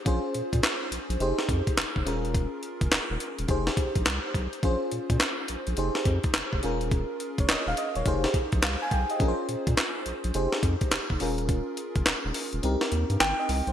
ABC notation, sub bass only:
X:1
M:4/4
L:1/16
Q:"Swing 16ths" 1/4=105
K:Fm
V:1 name="Sub bass" clef=bass
B,,, z B,, B,, z2 B,,, B,,, F,,, z F,, z F,,, F,,, E,,,2- | E,,,2 z F,,, E,,, E,,, z E,,, F,,,2 z B,,, C,, z =B,,, z | B,,, z B,, B,, z2 B,,, B,,, F,,, z F,, z F,,, F,,, E,,,2- | E,,,2 z F,,, E,,, E,,, z E,,, F,,,2 z B,,, C,, z =B,,, z |
B,,, z B,, B,, z2 B,,, B,,, F,,, z F,, z F,,, F,,, E,,,2- | E,,,2 z F,,, E,,, E,,, z E,,, C,, z E,, G,, G,,, z C,, =B,,, |]